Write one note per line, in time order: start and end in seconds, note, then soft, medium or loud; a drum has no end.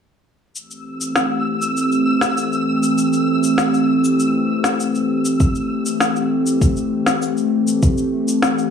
0.55 5.36 E3 medium
0.55 5.36 A3 medium
0.55 5.36 C4 medium
0.55 5.36 G4 medium
0.55 5.41 E6 medium
0.55 shaker soft
0.71 shaker soft
1.01 shaker medium
1.16 snare medium
1.16 shaker soft
1.62 shaker medium
1.77 shaker soft
1.92 shaker soft
2.21 snare medium
2.21 shaker medium
2.37 shaker soft
2.53 shaker soft
2.83 shaker medium
2.98 shaker soft
3.13 shaker soft
3.44 shaker medium
3.58 snare medium
3.58 shaker medium
3.74 shaker soft
4.04 shaker medium
4.20 shaker medium
4.64 snare medium
4.64 shaker medium
4.80 shaker soft
4.95 shaker soft
5.25 shaker medium
5.39 8.70 E3 medium
5.39 8.70 A3 medium
5.39 8.70 C4 medium
5.39 8.70 G4 medium
5.39 kick loud
5.39 shaker medium
5.55 shaker soft
5.86 shaker medium
6.00 snare medium
6.00 shaker medium
6.16 shaker soft
6.46 shaker medium
6.61 kick loud
6.61 shaker medium
6.77 shaker soft
7.06 snare medium
7.06 shaker medium
7.22 shaker soft
7.37 shaker soft
7.67 shaker medium
7.83 kick loud
7.83 shaker medium
7.98 shaker soft
8.28 shaker medium
8.42 snare medium
8.42 shaker soft
8.58 shaker soft